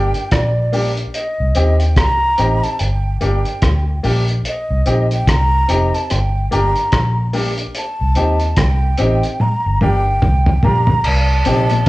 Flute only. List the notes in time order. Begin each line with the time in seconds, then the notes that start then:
Already playing: G5
0.32 D5
1.15 D#5
1.80 G5
1.97 A#5
2.63 A5
2.80 G5
3.21 G5
4.48 D#5
5.13 G5
5.29 A#5
5.94 A5
6.11 G5
6.52 A#5
7.78 A5
8.59 G5
9.41 A#5
9.82 G5
10.64 A#5
11.05 A5